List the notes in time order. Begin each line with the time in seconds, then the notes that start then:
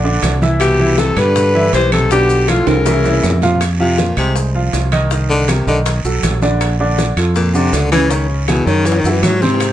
Already playing: A#1
0.04 D3 D4 D5, high conga
0.22 C2, high bongo, low bongo, high conga, high timbale, low timbale, short guiro, claves, maracas
0.42 E3 E4 E5, high bongo, high conga, short guiro, maracas
0.60 B2 G4, high bongo, high conga, high timbale, long guiro, claves, maracas
0.79 E3 E4 E5, high bongo, high conga
0.98 C3 A4, high bongo, high conga, high timbale, low timbale, short guiro, maracas
1.17 G2 D3 G3 G4 B4, high bongo, high conga, low conga, high timbale, short guiro, claves, maracas
1.36 high bongo, high conga, low conga, long guiro, maracas
1.55 E3 E4 E5, high conga
1.73 B1 E3 G3 G4 B4 C5, high bongo, low bongo, high conga, high timbale, low timbale, short guiro, maracas
1.92 C3 A4, high bongo, high conga, high timbale, short guiro, claves, maracas
2.11 B2 D3 D4 G4 D5, high bongo, high conga, long guiro, maracas
2.29 high bongo, high conga, maracas
2.48 A2 F3 F4 A4, high bongo, high conga, high timbale, low timbale, short guiro, claves, maracas
2.67 C2 C#3 A#4, high bongo, high conga, high timbale, short guiro, maracas
2.86 E3 E4 E5, high bongo, low timbale, long guiro, maracas
3.04 E3 E4 E5, low timbale, maracas
3.23 F2, high bongo, low bongo, low timbale, short guiro, claves, maracas
3.30 low conga
3.42 F3 F4 F5, high bongo, low conga, low timbale, short guiro, maracas
3.55 low conga
3.61 high bongo, high conga, high timbale, long guiro, claves, maracas
3.80 C3 F3 F4 F5, high bongo, high conga
3.98 A#2, high bongo, high conga, high timbale, low timbale, short guiro, maracas
4.17 C2 C3 G#3 G#4 C5, high bongo, high conga, high timbale, short guiro, claves, maracas
4.36 high bongo, high conga, long guiro, maracas
4.55 F3 F4 F5, high conga
4.73 C2, high bongo, low bongo, high conga, high timbale, low timbale, short guiro, maracas
4.92 D#3 D#4 D#5, high bongo, high conga, high timbale, short guiro, claves, maracas
5.11 D#3 D#4 D#5, high bongo, high conga, long guiro, maracas
5.30 D3, high bongo, high conga
5.48 C3 G3 G4 A#4, high bongo, high conga, high timbale, low timbale, short guiro, claves, maracas
5.67 B1 D3 D#3 D#4 D#5, high bongo, high conga, short guiro, maracas
5.86 high bongo, high conga, high timbale, long guiro, maracas
6.04 B1 F#3 F#4 A4, high conga, maracas
6.23 A#1, high bongo, low bongo, high conga, high timbale, low timbale, short guiro, claves, maracas
6.42 D3 D4 D5, high bongo, high conga, short guiro, maracas
6.61 high bongo, high conga, high timbale, long guiro, claves, maracas
6.80 D3 D4 D5, high bongo, high conga
6.98 high bongo, high conga, high timbale, low timbale, short guiro, maracas
7.17 F2 F3 F4 A4, high bongo, high conga, high timbale, short guiro, claves, maracas
7.36 A#2, high bongo, high conga, long guiro, maracas
7.54 C3 D3 D4 D5, high conga, maracas
7.73 C#2 D3, high bongo, low bongo, high conga, high timbale, low timbale, short guiro, maracas
7.92 C#3 E3 C#4 C#5, high bongo, high conga, high timbale, short guiro, claves, maracas
8.11 C#3 D#3 C#4 C#5, high bongo, high conga, long guiro, maracas
8.29 G#2, high bongo, high conga
8.48 B2 E3 E4 G#4, high bongo, high conga, high timbale, low timbale, short guiro, claves, maracas
8.66 F#2 C#3 D#3 C#4 C#5, high bongo, high conga, short guiro, maracas
8.85 E3, high conga, high timbale, long guiro, maracas
8.92 low bongo
8.99 D#3
9.04 F#2 E3 E4 F#4, low bongo, high conga, maracas
9.10 E3
9.17 low bongo
9.23 G#2 F#3, high conga, high timbale, low timbale, short guiro, claves, maracas
9.29 low bongo
9.42 C3 C4 C5, low bongo, high conga, short guiro, maracas
9.54 low bongo
9.60 high bongo, high conga, high timbale, long guiro, claves, maracas